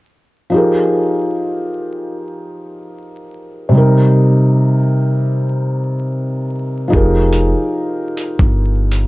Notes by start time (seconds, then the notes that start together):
0.50 F3 D#4
0.54 G4 G#4
0.58 A#4
3.69 C3 G3
3.75 D#4 A#4
6.88 F3 D#4
6.92 F1 G4 G#4, kick
6.96 A#4
7.33 closed hi-hat
8.17 closed hi-hat
8.39 G1, kick
8.92 closed hi-hat